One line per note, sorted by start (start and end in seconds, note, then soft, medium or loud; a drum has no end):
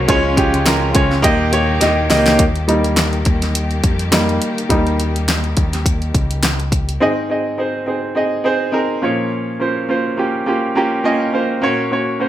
0.00 0.11 A#3 loud
0.00 0.08 C#4 loud
0.00 1.20 C#4 medium
0.00 0.11 F#4 loud
0.00 0.10 A#4 medium
0.00 0.10 C5 loud
0.00 0.10 C#5 loud
0.00 0.11 D#5 medium
0.08 0.51 C#2 loud
0.08 0.91 C#3 medium
0.08 1.23 F3 medium
0.08 1.22 G#3 medium
0.08 0.32 G#3 loud
0.08 0.32 C#4 loud
0.08 1.23 F4 medium
0.08 0.33 F4 medium
0.08 0.33 C#5 loud
0.08 kick loud
0.08 closed hi-hat medium
0.37 0.61 G#3 medium
0.37 0.61 C#4 medium
0.37 0.61 F4 medium
0.37 0.61 G4 medium
0.37 kick medium
0.37 closed hi-hat medium
0.54 0.92 C#2 medium
0.54 closed hi-hat soft
0.65 0.89 G#3 medium
0.65 0.90 C#4 medium
0.65 0.90 F4 medium
0.65 0.90 A#4 loud
0.65 snare loud
0.65 clap medium
0.65 closed hi-hat medium
0.94 1.22 C#2 medium
0.94 1.18 G#3 medium
0.94 1.19 C#4 medium
0.94 1.19 F4 medium
0.94 1.19 C#5 medium
0.94 kick medium
0.94 closed hi-hat medium
1.12 snare soft
1.22 1.78 D#2 loud
1.22 2.06 A#2 medium
1.22 2.38 D#3 medium
1.22 2.38 G3 medium
1.22 1.47 A#3 loud
1.22 2.38 A#3 medium
1.22 1.47 D#4 loud
1.22 1.47 G4 loud
1.22 2.38 G4 medium
1.22 1.48 D#5 loud
1.22 kick loud
1.22 closed hi-hat loud
1.51 1.76 A#3 medium
1.51 1.76 D#4 medium
1.51 1.76 G4 medium
1.51 1.77 C#5 medium
1.51 closed hi-hat medium
1.80 2.09 D#2 medium
1.80 2.05 A#3 medium
1.80 2.05 D#4 medium
1.80 2.05 G4 medium
1.80 2.06 D#5 medium
1.80 snare medium
1.80 closed hi-hat medium
2.09 2.38 C#2 medium
2.09 2.33 A#3 medium
2.09 2.34 D#4 medium
2.09 2.34 G4 medium
2.09 2.34 D#5 medium
2.09 snare medium
2.09 open hi-hat medium
2.26 snare medium
2.39 3.22 D#2 medium
2.39 6.97 D#3 medium
2.39 6.97 G3 medium
2.39 6.97 A#3 medium
2.39 6.97 G4 medium
2.39 kick loud
2.39 closed hi-hat medium
2.56 closed hi-hat soft
2.68 4.10 G3 soft
2.68 4.11 A#3 soft
2.68 4.11 D#4 medium
2.68 closed hi-hat medium
2.84 closed hi-hat soft
2.97 snare medium
2.97 clap medium
2.97 closed hi-hat medium
3.13 closed hi-hat soft
3.25 3.80 D#2 medium
3.25 kick medium
3.25 closed hi-hat medium
3.42 snare soft
3.42 closed hi-hat medium
3.55 closed hi-hat loud
3.71 closed hi-hat soft
3.84 4.37 F2 medium
3.84 kick medium
3.84 closed hi-hat medium
3.99 closed hi-hat soft
4.12 4.38 G3 soft
4.12 4.38 A#3 soft
4.12 4.39 D#4 soft
4.12 snare loud
4.12 clap medium
4.12 closed hi-hat medium
4.29 closed hi-hat soft
4.42 closed hi-hat medium
4.58 closed hi-hat soft
4.69 5.53 D#2 medium
4.69 5.09 G3 soft
4.69 5.10 A#3 soft
4.69 5.10 D#4 medium
4.69 kick loud
4.69 closed hi-hat medium
4.87 closed hi-hat soft
5.00 closed hi-hat medium
5.16 closed hi-hat soft
5.29 snare loud
5.29 clap medium
5.29 closed hi-hat medium
5.44 closed hi-hat soft
5.57 6.11 D#2 medium
5.57 kick medium
5.57 closed hi-hat medium
5.73 snare soft
5.73 closed hi-hat medium
5.86 kick medium
5.86 closed hi-hat loud
6.02 closed hi-hat soft
6.15 6.97 C#2 medium
6.15 kick medium
6.15 closed hi-hat medium
6.31 closed hi-hat soft
6.43 snare loud
6.43 clap medium
6.43 closed hi-hat medium
6.60 closed hi-hat soft
6.72 kick medium
6.72 closed hi-hat medium
6.89 closed hi-hat soft
7.00 8.99 G#2 soft
7.00 8.99 D#3 soft
7.00 7.24 C4 medium
7.00 7.25 D#4 medium
7.00 7.25 G#4 medium
7.00 7.25 D#5 medium
7.29 7.53 C4 medium
7.29 7.54 D#4 medium
7.29 7.54 G#4 medium
7.29 7.54 D#5 medium
7.58 7.82 C4 medium
7.58 7.82 D#4 medium
7.58 7.83 G#4 medium
7.58 7.83 C5 medium
7.86 8.11 C4 medium
7.86 8.11 D#4 medium
7.86 8.11 G#4 medium
7.86 8.12 C5 medium
8.15 8.39 C4 medium
8.15 8.40 D#4 medium
8.15 8.40 G#4 medium
8.15 8.40 D#5 medium
8.44 8.68 C4 medium
8.44 8.69 D#4 medium
8.44 8.69 G#4 medium
8.44 8.69 C5 medium
8.72 8.97 C4 medium
8.72 8.97 D#4 medium
8.72 8.97 G#4 medium
8.72 8.98 A#4 medium
9.02 11.30 A#2 medium
9.02 11.30 F3 medium
9.02 9.50 A#3 medium
9.02 9.50 C#4 medium
9.02 9.51 F4 medium
9.02 9.51 C#5 medium
9.60 9.84 A#3 medium
9.60 9.84 C#4 medium
9.60 9.85 F4 medium
9.60 9.85 C5 medium
9.89 10.13 A#3 medium
9.89 10.13 C#4 medium
9.89 10.13 F4 medium
9.89 10.14 C5 medium
10.17 10.42 A#3 medium
10.17 10.42 C#4 medium
10.17 10.42 F4 medium
10.17 10.43 G4 medium
10.46 10.71 A#3 medium
10.46 10.71 C#4 medium
10.46 10.71 F4 medium
10.46 10.71 G4 medium
10.75 11.00 A#3 medium
10.75 11.00 C#4 medium
10.75 11.00 F4 medium
10.75 11.01 G4 medium
10.75 11.03 A#5 medium
11.04 11.28 A#3 medium
11.04 11.29 C#4 medium
11.04 11.29 F4 medium
11.04 11.29 D#5 medium
11.04 11.20 G#5 medium
11.21 11.33 G5 medium
11.33 11.57 A#3 medium
11.33 11.57 C#4 medium
11.33 11.58 F4 medium
11.33 11.58 C5 medium
11.33 11.61 F5 soft
11.62 12.29 A#2 medium
11.62 11.86 A#3 medium
11.62 11.86 C#4 medium
11.62 11.87 F#4 medium
11.62 11.87 C#5 medium
11.91 12.15 A#3 medium
11.91 12.15 C#4 medium
11.91 12.16 F#4 medium
11.91 12.16 C#5 medium
12.19 12.29 A#3 medium
12.19 12.29 C#4 medium
12.19 12.29 F#4 medium
12.19 12.29 C5 medium